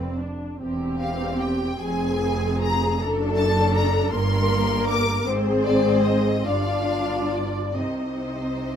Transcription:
Already playing: double bass section F1, cello section F2, viola section C4, violin section D5
0.20 viola section D4
0.61 double bass section E1, cello section E2, viola section C4 G4, violin section G4
1.00 violin section F5
1.40 violin section G5
1.81 double bass section F1, cello section F2, viola section C4 G#4, violin section G#4 G#5
2.61 violin section A#5
3.00 double bass section F#1, cello section F#2, viola section D4 A4, violin section A4
3.36 violin section A5
3.75 violin section A#5
4.12 double bass section G1, cello section G2, viola section A#3 A#4, violin section A#4 C6
4.87 violin section D6
5.26 double bass section G#1, cello section G#2, viola section C4 G#4, violin section C5
5.64 violin section D5
6.04 violin section D#5
6.45 double bass section G1, cello section G2, viola section D4 F4, violin section D5 F5
7.32 violin section D5
7.69 violin section D5
7.77 double bass section C2, cello section C3, viola section C4 D#4, violin section C5 D#5

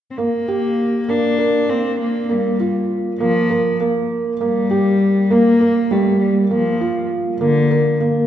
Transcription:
0.11 cello C4
0.18 cello A#3, felt piano A#3
0.48 felt piano G4
1.09 felt piano A#3, cello D4
1.39 felt piano A#4
1.69 felt piano A#3, cello C4
2.00 cello A#3
2.30 cello G3, felt piano A#3
2.60 felt piano F4
3.20 cello F3, felt piano A#3
3.50 felt piano A#4
3.81 felt piano A#3
4.41 cello G3, felt piano A#3
4.71 felt piano G4
5.31 felt piano A#3, cello A#3
5.61 felt piano A#4
5.91 felt piano G3, cello A3
6.21 cello G3
6.51 cello F3, felt piano A#3
6.81 felt piano F4
7.40 cello D3, felt piano A#3
7.71 felt piano A#4
8.00 felt piano A#3

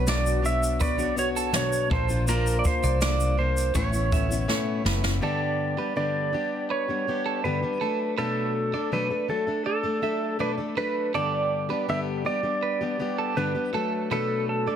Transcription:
Already playing: fingered electric bass B1, felt piano B3 D4 C#5, electric slide guitar B4, clean electric guitar B4
0.07 steel-string acoustic guitar B2 F#3 B3 D4 F#4, electric slide guitar D5, snare, shaker
0.26 shaker
0.42 steel-string acoustic guitar B3 D4 F#4 C#5, electric slide guitar E5, shaker
0.63 shaker
0.80 felt piano B3 D4 C#6, clean electric guitar B4, electric slide guitar D5, kick, shaker
0.98 steel-string acoustic guitar B3 D4 F#4 C#5, shaker
1.16 steel-string acoustic guitar B3 D4 F#4 C#5, electric slide guitar C#5, shaker
1.36 clean electric guitar A4, shaker
1.53 steel-string acoustic guitar B2 F#3 B3 D4 F#4 C#5, electric slide guitar C#5, snare, shaker
1.72 shaker
1.90 fingered electric bass A#1, steel-string acoustic guitar A#3 D4 F4 C5, felt piano A#3 D4 C5, clean electric guitar A4, electric slide guitar C5, kick
2.09 steel-string acoustic guitar D4 F4 C5, shaker
2.28 steel-string acoustic guitar A#3 D4 F4 C5, clean electric guitar A#4, electric slide guitar A#4, shaker
2.47 shaker
2.59 electric slide guitar D5
2.65 electric slide guitar C5, kick, shaker
2.83 fingered electric bass C2, clean electric guitar D5, shaker
3.01 steel-string acoustic guitar A#3 D4 F4 C5, electric slide guitar D5, snare, shaker
3.20 shaker
3.38 steel-string acoustic guitar A#3 D4 F4 C5, electric slide guitar C5
3.57 shaker
3.74 fingered electric bass A1, steel-string acoustic guitar A2 A3 B3 C#4 E4, felt piano A3 C#4 B4, clean electric guitar C#5, electric slide guitar C#5, kick, shaker
3.93 steel-string acoustic guitar B3 C#4 E4, shaker
4.11 steel-string acoustic guitar A3 B3 C#4 E4, clean electric guitar E5, kick, shaker
4.29 steel-string acoustic guitar B3 C#4 E4, shaker
4.48 steel-string acoustic guitar A2 A3 B3 C#4 E4, clean electric guitar C#5, snare
4.84 fingered electric bass F#1, steel-string acoustic guitar A3 B3 C#4 E4, clean electric guitar B4, snare
5.03 steel-string acoustic guitar B3 C#4 E4, snare
5.21 steel-string acoustic guitar G2 D3 G3 B3 D4 G4, clean electric guitar A4, electric slide guitar D5
5.77 steel-string acoustic guitar G3 B3 D4 G4, clean electric guitar B4
5.96 steel-string acoustic guitar G2 D3 G3 B3 D4 G4, electric slide guitar D5
6.32 steel-string acoustic guitar G3 B3 D4 G4
6.70 clean electric guitar B4, electric slide guitar C#5
6.88 steel-string acoustic guitar G3 B3 D4 G4
7.07 steel-string acoustic guitar G3 B3 D4 G4
7.26 clean electric guitar A4
7.44 steel-string acoustic guitar G2 D3 G3 B3 D4 G4, electric slide guitar B4
7.62 steel-string acoustic guitar G3 B3 D4 G4
7.81 steel-string acoustic guitar F#3 A3 D4 A4, clean electric guitar A4
8.18 steel-string acoustic guitar B2 F#3 A3 D4 A4, electric slide guitar A4, clean electric guitar B4
8.73 steel-string acoustic guitar A3 D4 A4, clean electric guitar D5
8.92 steel-string acoustic guitar B2 F#3 A3 D4 A4, electric slide guitar B4
9.10 steel-string acoustic guitar A3 D4 A4
9.28 steel-string acoustic guitar F#3 A3 D4 A4, electric slide guitar A4
9.47 steel-string acoustic guitar A3 D4 A4
9.66 electric slide guitar A4, clean electric guitar D5
9.83 steel-string acoustic guitar A3 D4 A4
10.02 steel-string acoustic guitar F#3 A3 D4 A4, clean electric guitar E5
10.39 steel-string acoustic guitar B2 F#3 A3 D4 A4, electric slide guitar B4, clean electric guitar D5
10.58 steel-string acoustic guitar A3 D4 A4
10.76 steel-string acoustic guitar F#3 A3 D4 A4, clean electric guitar B4, electric slide guitar B4
11.14 steel-string acoustic guitar G2 D3 G3 B3 D4 G4, clean electric guitar A4, electric slide guitar D5
11.69 steel-string acoustic guitar G3 B3 D4 G4, clean electric guitar B4
11.88 steel-string acoustic guitar G2 D3 G3 B3 D4 G4, electric slide guitar E5
12.25 steel-string acoustic guitar G3 B3 D4 G4, electric slide guitar D5
12.43 steel-string acoustic guitar G3 B3 D4 G4
12.63 clean electric guitar B4
12.81 steel-string acoustic guitar G3 B3 D4 G4
12.99 steel-string acoustic guitar G3 B3 D4 G4
13.18 clean electric guitar A4
13.36 steel-string acoustic guitar G2 D3 G3 B3 D4 G4, electric slide guitar B4
13.55 steel-string acoustic guitar G3 B3 D4 G4
13.73 steel-string acoustic guitar F#3 A3 D4 A4, clean electric guitar A4
14.11 steel-string acoustic guitar B2 F#3 A3 D4 A4, electric slide guitar A4, clean electric guitar B4
14.49 electric slide guitar A4
14.67 steel-string acoustic guitar A3 D4 A4, clean electric guitar D5

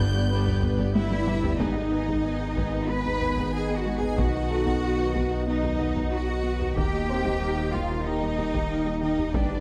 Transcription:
Already playing: double bass section G1, sub bass G1, cello section G2, analog synth pad D3 B3 G4 B4, viola section G3 D4, violin section G6
0.00 violin section B4
0.14 viola section B3, violin section G4 D5
0.30 viola section G3 D4, synth arpeggio sound G3, french horn section B3 G4, violin section B4
0.46 viola section B3, synth arpeggio sound B3, violin section G4 D5, taiko low
0.62 viola section G3 D4, synth arpeggio sound B3, violin section B4, taiko low
0.78 synth arpeggio sound G3, viola section B3, violin section G4 D5, taiko
0.95 viola section G3 D4, cello section E4, synth arpeggio sound G4, violin section B4 E5, taiko high
1.11 viola section B3, synth arpeggio sound B3, violin section G4 D5, taiko high
1.27 synth arpeggio sound G3, viola section G3 D4, violin section B4, taiko low-mid
1.44 viola section B3, synth arpeggio sound G4, violin section G4 D5, taiko low
1.59 double bass section G#1, sub bass G#1, analog synth pad D#3 B3 D#4 D#5, synth arpeggio sound G#3, viola section B3 B4, french horn section B3 D#4, cello section D#4, violin section D#5 G#5, taiko
1.76 viola section D#4 G#4, synth arpeggio sound D#4, violin section D#5
1.91 viola section B3 B4, violin section G#5
2.07 synth arpeggio sound G#3, viola section D#4 G#4, violin section D#5, taiko
2.24 viola section B3 B4, synth arpeggio sound B3, violin section G#5
2.40 viola section D#4 G#4, synth arpeggio sound G#4, violin section D#5
2.56 synth arpeggio sound G#3, viola section B3 B4, grand piano B4, violin section G#5, taiko
2.72 viola section D#4 G#4, violin section D#5
2.88 synth arpeggio sound G#3, viola section B3 B4, cello section B4, violin section G#5 B5
3.05 synth arpeggio sound B3, viola section D#4 G#4, violin section D#5, taiko low
3.21 synth arpeggio sound B3, viola section B3 B4, violin section G#5, taiko low
3.38 synth arpeggio sound G#3, viola section D#4 G#4, violin section D#5, taiko
3.53 viola section B3 B4, synth arpeggio sound G#4, cello section G#4, violin section G#5
3.69 synth arpeggio sound B3, viola section D#4 G#4, violin section D#5
3.75 cello section F#4, violin section F#5
3.86 synth arpeggio sound G#3, viola section B3 B4, violin section G#5
3.98 viola section D#4, cello section G#4, violin section G#5
4.02 viola section G#4, synth arpeggio sound G#4, violin section D#5, taiko low
4.18 sub bass B1, double bass section B1, synth arpeggio sound B3, viola section F#4 B4, cello section F#4, violin section F#5, taiko
4.33 viola section D#4 F#4, synth arpeggio sound F#4, violin section D#5
4.50 viola section F#4 B4, grand piano A4, violin section F#5
4.66 synth arpeggio sound B3, viola section D#4 F#4, violin section D#5, taiko
4.82 synth arpeggio sound D#4, viola section F#4 B4, violin section F#5
4.98 viola section D#4 F#4, synth arpeggio sound B4, violin section D#5
5.15 synth arpeggio sound B3, viola section F#4 B4, violin section F#5, taiko
5.30 viola section D#4 F#4, violin section D#5
5.46 synth arpeggio sound B3, cello section D#4, viola section F#4 B4, violin section D#5 F#5
5.63 viola section D#4 F#4, violin section D#5, taiko low
5.79 synth arpeggio sound D#4, viola section F#4 B4, violin section F#5, taiko low
5.95 synth arpeggio sound B3, viola section D#4 F#4, violin section D#5, taiko
6.11 viola section F#4 B4, cello section F#4, synth arpeggio sound B4, violin section F#5
6.27 synth arpeggio sound D#4, viola section D#4 F#4, violin section D#5
6.43 synth arpeggio sound B3, viola section F#4 B4, violin section F#5
6.60 viola section D#4 F#4, synth arpeggio sound B4, violin section D#5, taiko low
6.76 sub bass D#1, double bass section D#2, synth arpeggio sound D#3, analog synth pad D#3 A#3 D#4 D#5, french horn section A#3 D#4, cello section G4, viola section G4 A#4, violin section G5, taiko
6.92 synth arpeggio sound A#3, viola section D#4 G4, violin section D#5
7.07 grand piano C4 C5, viola section G4 A#4, violin section G5
7.24 synth arpeggio sound D#3, viola section D#4 G4, violin section D#5, taiko
7.40 synth arpeggio sound G3, viola section G4 A#4, violin section G5
7.56 viola section D#4 G4, synth arpeggio sound D#4, violin section D#5
7.73 synth arpeggio sound D#3, cello section F4, viola section G4 A#4, violin section F5 G5, taiko
7.89 viola section D#4 G4, violin section D#5
8.05 synth arpeggio sound D#3, cello section D#4, viola section G4 A#4, violin section D#5 G5
8.20 synth arpeggio sound G3, viola section D#4 G4, violin section D#5, taiko low
8.37 synth arpeggio sound G3, viola section G4 A#4, violin section G5, taiko low
8.54 synth arpeggio sound D#3, viola section D#4 G4, violin section D#5, taiko
8.69 synth arpeggio sound D#4, viola section G4 A#4, violin section G5
8.85 synth arpeggio sound G3, viola section D#4 G4, violin section D#5
9.00 synth arpeggio sound D#3, cello section D#4, viola section G4 A#4, violin section D#5 G5
9.18 viola section D#4 G4, synth arpeggio sound D#4, violin section D#5, taiko low
9.33 double bass section G1, sub bass G1, analog synth pad D3 B3 G4 B4, synth arpeggio sound G3, french horn section B3 D4, viola section D4 B4, cello section D4, violin section D5 G5, taiko
9.49 viola section B3 G4, synth arpeggio sound D4, violin section D5

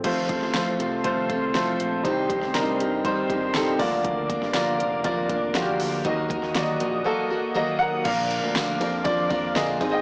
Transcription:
0.04 analog synth bass F1, steel-string acoustic guitar F3 C4 F4 A4, grand piano A3 F4 C5, tonewheel organ A4 C5 F5 C6, kick, closed hi-hat, crash
0.29 steel-string acoustic guitar C4 F4 A4, kick, closed hi-hat
0.42 analog synth bass A1, snare
0.54 steel-string acoustic guitar F3 C4 F4 A4, grand piano A3 F4 C5, snare, closed hi-hat
0.79 analog synth bass C2, steel-string acoustic guitar C4 F4 A4, closed hi-hat
1.04 steel-string acoustic guitar F3 C4 F4 A4, grand piano A3 F4 C5, kick, closed hi-hat
1.30 steel-string acoustic guitar C4 F4 A4, kick, closed hi-hat
1.54 steel-string acoustic guitar F3 C4 F4 A4, grand piano A3 F4 C5, snare, closed hi-hat
1.80 analog synth bass A#1, closed hi-hat
2.03 analog synth bass C2, grand piano C3 G3 D#4 C5, steel-string acoustic guitar C3 G3 C4 D#4 G4, tonewheel organ G4 D#5, kick, closed hi-hat
2.29 steel-string acoustic guitar C4 D#4 G4, kick, closed hi-hat
2.42 analog synth bass A1, snare
2.54 steel-string acoustic guitar C3 G3 C4 D#4 G4, grand piano G3 D4 A#4, snare, closed hi-hat
2.60 grand piano D#4
2.79 analog synth bass G1, steel-string acoustic guitar C4 D#4 G4, closed hi-hat
3.04 grand piano G3 D#4 C5, steel-string acoustic guitar G3 C4 D#4 G4, kick, closed hi-hat
3.30 steel-string acoustic guitar C4 D#4 G4, kick, closed hi-hat
3.54 steel-string acoustic guitar C3 G3 C4 D#4 G4, grand piano G3 D#4 A4, snare, closed hi-hat
3.79 analog synth bass D2, grand piano D3 A#3 F4 D5, steel-string acoustic guitar D3 F3 A#3 D4 A#4, tonewheel organ A#3 D5 F5 D6, kick, open hi-hat
4.04 kick, closed hi-hat
4.30 steel-string acoustic guitar A#3 D4 A#4, kick, closed hi-hat
4.42 analog synth bass G1, snare
4.53 steel-string acoustic guitar D3 F3 A#3 D4 A#4, grand piano A#3 F4 D5, snare, closed hi-hat
4.78 analog synth bass F1, steel-string acoustic guitar A#3 D4 A#4, closed hi-hat
5.04 steel-string acoustic guitar F3 A#3 D4 A#4, grand piano A#3 F4 D5, kick, closed hi-hat
5.29 steel-string acoustic guitar A#3 D4 A#4, kick, closed hi-hat
5.54 steel-string acoustic guitar D3 F3 A#3 D4 A#4, grand piano A#3 F4 F#4, snare, closed hi-hat
5.62 grand piano G4
5.80 analog synth bass D2, open hi-hat
6.04 analog synth bass D#2, steel-string acoustic guitar D#3 F#3 A#3 F#4 A#4, grand piano D#3 A#3 F#4 D#5, tonewheel organ D#5 F#5 D#6, kick, closed hi-hat
6.29 steel-string acoustic guitar A#3 F#4 A#4, kick, closed hi-hat
6.43 analog synth bass D#2, snare
6.54 steel-string acoustic guitar D#3 F#3 A#3 F#4 A#4, grand piano A#3 F#4 D5, snare, closed hi-hat
6.62 grand piano D#5
6.80 analog synth bass A#1, steel-string acoustic guitar A#3 F#4 A#4, closed hi-hat
7.04 steel-string acoustic guitar F#3 A#3 F#4 A#4, grand piano A#3 F#4 A4
7.30 steel-string acoustic guitar A#3 F#4 A#4
7.55 steel-string acoustic guitar D#3 F#3 A#3 F#4 A#4, grand piano A#3 F#4 D#5
7.79 grand piano A#4 F#5
8.04 analog synth bass A#1, steel-string acoustic guitar A#2 D3 F3 A#3 D4 A#4, tonewheel organ A#4 D5 F5 D6, grand piano A#4 F5, kick, crash, ride
8.31 ride
8.43 analog synth bass D2
8.55 steel-string acoustic guitar A#2 D3 F3 A#3 D4 A#4, snare, ride
8.80 analog synth bass F2, grand piano F3 A#3 D4, steel-string acoustic guitar F3 A#3 D4 A#4, ride
9.04 steel-string acoustic guitar F3 A#3 D4 A#4, grand piano F4 D5, kick, ride
9.29 steel-string acoustic guitar F3 A#3 D4 A#4, grand piano F4 D5, kick, ride
9.55 steel-string acoustic guitar A#2 D3 F3 A#3 D4 A#4, grand piano G#4 D#5, snare, ride
9.79 analog synth bass G#1, steel-string acoustic guitar G#2 D#3 G#3 C4 D#4 G#4, grand piano G#3 C4 D#4, tonewheel organ G#4 C5 D#5 D#6, kick, ride
9.92 grand piano D#5 G5

